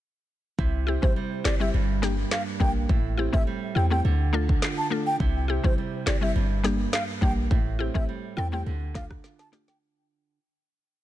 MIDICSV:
0, 0, Header, 1, 6, 480
1, 0, Start_track
1, 0, Key_signature, -1, "minor"
1, 0, Tempo, 576923
1, 488, Time_signature, 4, 2, 24, 8
1, 9177, End_track
2, 0, Start_track
2, 0, Title_t, "Flute"
2, 0, Program_c, 0, 73
2, 855, Note_on_c, 0, 72, 78
2, 929, Note_off_c, 0, 72, 0
2, 1208, Note_on_c, 0, 74, 78
2, 1291, Note_off_c, 0, 74, 0
2, 1336, Note_on_c, 0, 76, 72
2, 1409, Note_off_c, 0, 76, 0
2, 1928, Note_on_c, 0, 77, 76
2, 2011, Note_off_c, 0, 77, 0
2, 2169, Note_on_c, 0, 79, 74
2, 2251, Note_off_c, 0, 79, 0
2, 2776, Note_on_c, 0, 76, 77
2, 2850, Note_off_c, 0, 76, 0
2, 3127, Note_on_c, 0, 79, 75
2, 3210, Note_off_c, 0, 79, 0
2, 3253, Note_on_c, 0, 79, 67
2, 3327, Note_off_c, 0, 79, 0
2, 3976, Note_on_c, 0, 81, 76
2, 4049, Note_off_c, 0, 81, 0
2, 4216, Note_on_c, 0, 79, 79
2, 4289, Note_off_c, 0, 79, 0
2, 4696, Note_on_c, 0, 72, 71
2, 4769, Note_off_c, 0, 72, 0
2, 5047, Note_on_c, 0, 74, 77
2, 5130, Note_off_c, 0, 74, 0
2, 5177, Note_on_c, 0, 76, 69
2, 5250, Note_off_c, 0, 76, 0
2, 5767, Note_on_c, 0, 77, 87
2, 5850, Note_off_c, 0, 77, 0
2, 6007, Note_on_c, 0, 79, 74
2, 6090, Note_off_c, 0, 79, 0
2, 6615, Note_on_c, 0, 76, 72
2, 6688, Note_off_c, 0, 76, 0
2, 6967, Note_on_c, 0, 79, 82
2, 7050, Note_off_c, 0, 79, 0
2, 7093, Note_on_c, 0, 79, 77
2, 7167, Note_off_c, 0, 79, 0
2, 7447, Note_on_c, 0, 77, 72
2, 7530, Note_off_c, 0, 77, 0
2, 7814, Note_on_c, 0, 81, 74
2, 7888, Note_off_c, 0, 81, 0
2, 8055, Note_on_c, 0, 79, 70
2, 8129, Note_off_c, 0, 79, 0
2, 9177, End_track
3, 0, Start_track
3, 0, Title_t, "Synth pluck"
3, 0, Program_c, 1, 84
3, 722, Note_on_c, 1, 64, 73
3, 735, Note_on_c, 1, 67, 79
3, 776, Note_off_c, 1, 64, 0
3, 782, Note_off_c, 1, 67, 0
3, 850, Note_on_c, 1, 55, 66
3, 854, Note_on_c, 1, 60, 62
3, 859, Note_on_c, 1, 64, 60
3, 863, Note_on_c, 1, 67, 71
3, 943, Note_off_c, 1, 55, 0
3, 945, Note_off_c, 1, 60, 0
3, 947, Note_off_c, 1, 64, 0
3, 949, Note_off_c, 1, 67, 0
3, 1202, Note_on_c, 1, 64, 74
3, 1214, Note_on_c, 1, 67, 85
3, 1255, Note_off_c, 1, 64, 0
3, 1262, Note_off_c, 1, 67, 0
3, 1329, Note_on_c, 1, 55, 69
3, 1334, Note_on_c, 1, 60, 63
3, 1337, Note_on_c, 1, 64, 65
3, 1342, Note_on_c, 1, 67, 78
3, 1422, Note_off_c, 1, 55, 0
3, 1424, Note_off_c, 1, 60, 0
3, 1426, Note_off_c, 1, 64, 0
3, 1428, Note_off_c, 1, 67, 0
3, 1682, Note_on_c, 1, 55, 86
3, 1686, Note_on_c, 1, 58, 78
3, 1690, Note_on_c, 1, 62, 79
3, 1695, Note_on_c, 1, 67, 99
3, 1786, Note_off_c, 1, 55, 0
3, 1788, Note_off_c, 1, 58, 0
3, 1791, Note_off_c, 1, 62, 0
3, 1793, Note_off_c, 1, 67, 0
3, 2160, Note_on_c, 1, 55, 77
3, 2164, Note_on_c, 1, 58, 69
3, 2169, Note_on_c, 1, 62, 70
3, 2173, Note_on_c, 1, 67, 80
3, 2266, Note_off_c, 1, 55, 0
3, 2268, Note_off_c, 1, 58, 0
3, 2270, Note_off_c, 1, 62, 0
3, 2272, Note_off_c, 1, 67, 0
3, 2642, Note_on_c, 1, 64, 74
3, 2654, Note_on_c, 1, 67, 80
3, 2696, Note_off_c, 1, 64, 0
3, 2702, Note_off_c, 1, 67, 0
3, 2767, Note_on_c, 1, 57, 67
3, 2771, Note_on_c, 1, 60, 64
3, 2776, Note_on_c, 1, 64, 59
3, 2780, Note_on_c, 1, 67, 73
3, 2861, Note_off_c, 1, 57, 0
3, 2863, Note_off_c, 1, 60, 0
3, 2865, Note_off_c, 1, 64, 0
3, 2868, Note_off_c, 1, 67, 0
3, 3121, Note_on_c, 1, 64, 76
3, 3134, Note_on_c, 1, 67, 79
3, 3175, Note_off_c, 1, 64, 0
3, 3181, Note_off_c, 1, 67, 0
3, 3248, Note_on_c, 1, 57, 69
3, 3253, Note_on_c, 1, 60, 62
3, 3256, Note_on_c, 1, 64, 64
3, 3260, Note_on_c, 1, 67, 78
3, 3342, Note_off_c, 1, 57, 0
3, 3344, Note_off_c, 1, 60, 0
3, 3346, Note_off_c, 1, 64, 0
3, 3348, Note_off_c, 1, 67, 0
3, 3600, Note_on_c, 1, 57, 89
3, 3605, Note_on_c, 1, 62, 80
3, 3609, Note_on_c, 1, 65, 76
3, 3613, Note_on_c, 1, 69, 96
3, 3706, Note_off_c, 1, 57, 0
3, 3708, Note_off_c, 1, 62, 0
3, 3710, Note_off_c, 1, 65, 0
3, 3712, Note_off_c, 1, 69, 0
3, 4080, Note_on_c, 1, 57, 74
3, 4084, Note_on_c, 1, 62, 68
3, 4089, Note_on_c, 1, 65, 71
3, 4093, Note_on_c, 1, 69, 84
3, 4185, Note_off_c, 1, 57, 0
3, 4188, Note_off_c, 1, 62, 0
3, 4190, Note_off_c, 1, 65, 0
3, 4192, Note_off_c, 1, 69, 0
3, 4561, Note_on_c, 1, 64, 72
3, 4574, Note_on_c, 1, 67, 79
3, 4615, Note_off_c, 1, 64, 0
3, 4622, Note_off_c, 1, 67, 0
3, 4688, Note_on_c, 1, 55, 66
3, 4692, Note_on_c, 1, 60, 62
3, 4696, Note_on_c, 1, 64, 64
3, 4700, Note_on_c, 1, 67, 76
3, 4782, Note_off_c, 1, 55, 0
3, 4784, Note_off_c, 1, 60, 0
3, 4786, Note_off_c, 1, 64, 0
3, 4788, Note_off_c, 1, 67, 0
3, 5043, Note_on_c, 1, 64, 75
3, 5055, Note_on_c, 1, 67, 87
3, 5096, Note_off_c, 1, 64, 0
3, 5102, Note_off_c, 1, 67, 0
3, 5167, Note_on_c, 1, 55, 70
3, 5172, Note_on_c, 1, 60, 61
3, 5176, Note_on_c, 1, 64, 61
3, 5180, Note_on_c, 1, 67, 75
3, 5261, Note_off_c, 1, 55, 0
3, 5263, Note_off_c, 1, 60, 0
3, 5266, Note_off_c, 1, 64, 0
3, 5268, Note_off_c, 1, 67, 0
3, 5521, Note_on_c, 1, 55, 87
3, 5525, Note_on_c, 1, 58, 78
3, 5529, Note_on_c, 1, 62, 80
3, 5533, Note_on_c, 1, 67, 100
3, 5626, Note_off_c, 1, 55, 0
3, 5628, Note_off_c, 1, 58, 0
3, 5630, Note_off_c, 1, 62, 0
3, 5632, Note_off_c, 1, 67, 0
3, 6001, Note_on_c, 1, 55, 76
3, 6006, Note_on_c, 1, 58, 70
3, 6010, Note_on_c, 1, 62, 70
3, 6014, Note_on_c, 1, 67, 85
3, 6106, Note_off_c, 1, 55, 0
3, 6108, Note_off_c, 1, 58, 0
3, 6110, Note_off_c, 1, 62, 0
3, 6113, Note_off_c, 1, 67, 0
3, 6481, Note_on_c, 1, 64, 74
3, 6493, Note_on_c, 1, 67, 81
3, 6535, Note_off_c, 1, 64, 0
3, 6541, Note_off_c, 1, 67, 0
3, 6609, Note_on_c, 1, 57, 67
3, 6613, Note_on_c, 1, 60, 63
3, 6617, Note_on_c, 1, 64, 62
3, 6621, Note_on_c, 1, 67, 76
3, 6702, Note_off_c, 1, 57, 0
3, 6704, Note_off_c, 1, 60, 0
3, 6706, Note_off_c, 1, 64, 0
3, 6708, Note_off_c, 1, 67, 0
3, 6962, Note_on_c, 1, 64, 78
3, 6975, Note_on_c, 1, 69, 87
3, 7016, Note_off_c, 1, 64, 0
3, 7022, Note_off_c, 1, 69, 0
3, 7089, Note_on_c, 1, 57, 70
3, 7094, Note_on_c, 1, 60, 64
3, 7098, Note_on_c, 1, 64, 66
3, 7101, Note_on_c, 1, 67, 72
3, 7182, Note_off_c, 1, 57, 0
3, 7184, Note_off_c, 1, 60, 0
3, 7186, Note_off_c, 1, 64, 0
3, 7188, Note_off_c, 1, 67, 0
3, 7442, Note_on_c, 1, 57, 72
3, 7447, Note_on_c, 1, 62, 68
3, 7451, Note_on_c, 1, 65, 68
3, 7455, Note_on_c, 1, 69, 81
3, 7546, Note_off_c, 1, 57, 0
3, 7549, Note_off_c, 1, 62, 0
3, 7551, Note_off_c, 1, 65, 0
3, 7553, Note_off_c, 1, 69, 0
3, 7920, Note_on_c, 1, 57, 77
3, 7925, Note_on_c, 1, 62, 69
3, 7929, Note_on_c, 1, 65, 70
3, 7934, Note_on_c, 1, 67, 82
3, 8026, Note_off_c, 1, 57, 0
3, 8028, Note_off_c, 1, 62, 0
3, 8030, Note_off_c, 1, 65, 0
3, 8032, Note_off_c, 1, 67, 0
3, 9177, End_track
4, 0, Start_track
4, 0, Title_t, "Nylon-string guitar"
4, 0, Program_c, 2, 24
4, 488, Note_on_c, 2, 48, 77
4, 493, Note_on_c, 2, 64, 64
4, 728, Note_on_c, 2, 60, 62
4, 967, Note_on_c, 2, 55, 62
4, 1198, Note_off_c, 2, 60, 0
4, 1208, Note_on_c, 2, 60, 63
4, 1447, Note_on_c, 2, 43, 84
4, 1499, Note_off_c, 2, 48, 0
4, 1499, Note_off_c, 2, 60, 0
4, 1501, Note_off_c, 2, 64, 0
4, 1688, Note_on_c, 2, 58, 61
4, 1927, Note_on_c, 2, 62, 66
4, 2159, Note_off_c, 2, 58, 0
4, 2169, Note_on_c, 2, 58, 60
4, 2404, Note_off_c, 2, 43, 0
4, 2407, Note_off_c, 2, 62, 0
4, 2408, Note_on_c, 2, 45, 77
4, 2413, Note_on_c, 2, 64, 66
4, 2433, Note_off_c, 2, 55, 0
4, 2459, Note_off_c, 2, 58, 0
4, 2648, Note_on_c, 2, 60, 64
4, 2887, Note_on_c, 2, 55, 61
4, 3118, Note_off_c, 2, 60, 0
4, 3128, Note_on_c, 2, 60, 62
4, 3367, Note_on_c, 2, 50, 84
4, 3418, Note_off_c, 2, 55, 0
4, 3419, Note_off_c, 2, 45, 0
4, 3419, Note_off_c, 2, 60, 0
4, 3421, Note_off_c, 2, 64, 0
4, 3607, Note_on_c, 2, 62, 62
4, 3847, Note_on_c, 2, 65, 67
4, 4077, Note_off_c, 2, 62, 0
4, 4087, Note_on_c, 2, 62, 60
4, 4324, Note_off_c, 2, 50, 0
4, 4327, Note_off_c, 2, 65, 0
4, 4327, Note_on_c, 2, 48, 80
4, 4332, Note_on_c, 2, 64, 69
4, 4378, Note_off_c, 2, 62, 0
4, 4567, Note_on_c, 2, 60, 64
4, 4809, Note_on_c, 2, 55, 61
4, 5037, Note_off_c, 2, 60, 0
4, 5047, Note_on_c, 2, 60, 62
4, 5288, Note_on_c, 2, 43, 87
4, 5338, Note_off_c, 2, 48, 0
4, 5338, Note_off_c, 2, 60, 0
4, 5341, Note_off_c, 2, 64, 0
4, 5528, Note_on_c, 2, 58, 62
4, 5769, Note_on_c, 2, 62, 68
4, 5999, Note_off_c, 2, 58, 0
4, 6009, Note_on_c, 2, 58, 60
4, 6246, Note_off_c, 2, 43, 0
4, 6248, Note_off_c, 2, 62, 0
4, 6249, Note_on_c, 2, 45, 79
4, 6254, Note_on_c, 2, 64, 71
4, 6274, Note_off_c, 2, 55, 0
4, 6299, Note_off_c, 2, 58, 0
4, 6488, Note_on_c, 2, 60, 64
4, 6728, Note_on_c, 2, 55, 61
4, 6958, Note_off_c, 2, 60, 0
4, 6968, Note_on_c, 2, 60, 63
4, 7208, Note_on_c, 2, 50, 85
4, 7259, Note_off_c, 2, 45, 0
4, 7259, Note_off_c, 2, 55, 0
4, 7259, Note_off_c, 2, 60, 0
4, 7262, Note_off_c, 2, 64, 0
4, 7448, Note_on_c, 2, 62, 63
4, 7688, Note_on_c, 2, 65, 66
4, 7925, Note_off_c, 2, 62, 0
4, 7928, Note_on_c, 2, 62, 58
4, 8635, Note_off_c, 2, 50, 0
4, 8635, Note_off_c, 2, 62, 0
4, 8635, Note_off_c, 2, 65, 0
4, 9177, End_track
5, 0, Start_track
5, 0, Title_t, "808-style bass"
5, 0, Program_c, 3, 38
5, 487, Note_on_c, 3, 36, 109
5, 808, Note_off_c, 3, 36, 0
5, 856, Note_on_c, 3, 33, 93
5, 954, Note_off_c, 3, 33, 0
5, 1207, Note_on_c, 3, 31, 99
5, 1417, Note_off_c, 3, 31, 0
5, 1448, Note_on_c, 3, 31, 105
5, 1867, Note_off_c, 3, 31, 0
5, 2167, Note_on_c, 3, 34, 93
5, 2377, Note_off_c, 3, 34, 0
5, 2408, Note_on_c, 3, 33, 101
5, 2728, Note_off_c, 3, 33, 0
5, 2777, Note_on_c, 3, 33, 86
5, 2874, Note_off_c, 3, 33, 0
5, 3127, Note_on_c, 3, 40, 98
5, 3337, Note_off_c, 3, 40, 0
5, 3367, Note_on_c, 3, 38, 100
5, 3786, Note_off_c, 3, 38, 0
5, 4327, Note_on_c, 3, 36, 106
5, 4648, Note_off_c, 3, 36, 0
5, 4696, Note_on_c, 3, 33, 98
5, 4794, Note_off_c, 3, 33, 0
5, 5048, Note_on_c, 3, 31, 88
5, 5257, Note_off_c, 3, 31, 0
5, 5288, Note_on_c, 3, 31, 97
5, 5707, Note_off_c, 3, 31, 0
5, 6007, Note_on_c, 3, 34, 94
5, 6217, Note_off_c, 3, 34, 0
5, 6248, Note_on_c, 3, 33, 104
5, 6568, Note_off_c, 3, 33, 0
5, 6616, Note_on_c, 3, 33, 92
5, 6714, Note_off_c, 3, 33, 0
5, 6969, Note_on_c, 3, 40, 103
5, 7178, Note_off_c, 3, 40, 0
5, 7207, Note_on_c, 3, 38, 94
5, 7627, Note_off_c, 3, 38, 0
5, 9177, End_track
6, 0, Start_track
6, 0, Title_t, "Drums"
6, 488, Note_on_c, 9, 36, 104
6, 571, Note_off_c, 9, 36, 0
6, 856, Note_on_c, 9, 36, 89
6, 939, Note_off_c, 9, 36, 0
6, 1207, Note_on_c, 9, 38, 108
6, 1216, Note_on_c, 9, 39, 85
6, 1291, Note_off_c, 9, 38, 0
6, 1299, Note_off_c, 9, 39, 0
6, 1688, Note_on_c, 9, 38, 63
6, 1771, Note_off_c, 9, 38, 0
6, 1926, Note_on_c, 9, 38, 113
6, 1934, Note_on_c, 9, 39, 87
6, 2009, Note_off_c, 9, 38, 0
6, 2017, Note_off_c, 9, 39, 0
6, 2167, Note_on_c, 9, 36, 88
6, 2250, Note_off_c, 9, 36, 0
6, 2408, Note_on_c, 9, 36, 101
6, 2491, Note_off_c, 9, 36, 0
6, 2776, Note_on_c, 9, 36, 86
6, 2860, Note_off_c, 9, 36, 0
6, 3737, Note_on_c, 9, 36, 91
6, 3821, Note_off_c, 9, 36, 0
6, 3847, Note_on_c, 9, 38, 105
6, 3855, Note_on_c, 9, 39, 85
6, 3930, Note_off_c, 9, 38, 0
6, 3938, Note_off_c, 9, 39, 0
6, 4327, Note_on_c, 9, 36, 107
6, 4411, Note_off_c, 9, 36, 0
6, 4696, Note_on_c, 9, 36, 88
6, 4779, Note_off_c, 9, 36, 0
6, 5048, Note_on_c, 9, 38, 110
6, 5057, Note_on_c, 9, 39, 86
6, 5132, Note_off_c, 9, 38, 0
6, 5140, Note_off_c, 9, 39, 0
6, 5528, Note_on_c, 9, 38, 68
6, 5611, Note_off_c, 9, 38, 0
6, 5767, Note_on_c, 9, 38, 112
6, 5775, Note_on_c, 9, 39, 87
6, 5850, Note_off_c, 9, 38, 0
6, 5858, Note_off_c, 9, 39, 0
6, 6007, Note_on_c, 9, 36, 88
6, 6090, Note_off_c, 9, 36, 0
6, 6248, Note_on_c, 9, 36, 109
6, 6331, Note_off_c, 9, 36, 0
6, 6616, Note_on_c, 9, 36, 87
6, 6699, Note_off_c, 9, 36, 0
6, 7448, Note_on_c, 9, 36, 84
6, 7448, Note_on_c, 9, 38, 65
6, 7531, Note_off_c, 9, 38, 0
6, 7532, Note_off_c, 9, 36, 0
6, 7576, Note_on_c, 9, 37, 98
6, 7577, Note_on_c, 9, 36, 95
6, 7659, Note_off_c, 9, 37, 0
6, 7660, Note_off_c, 9, 36, 0
6, 7688, Note_on_c, 9, 38, 56
6, 7771, Note_off_c, 9, 38, 0
6, 7815, Note_on_c, 9, 38, 58
6, 7898, Note_off_c, 9, 38, 0
6, 7928, Note_on_c, 9, 38, 89
6, 8011, Note_off_c, 9, 38, 0
6, 8055, Note_on_c, 9, 38, 85
6, 8138, Note_off_c, 9, 38, 0
6, 9177, End_track
0, 0, End_of_file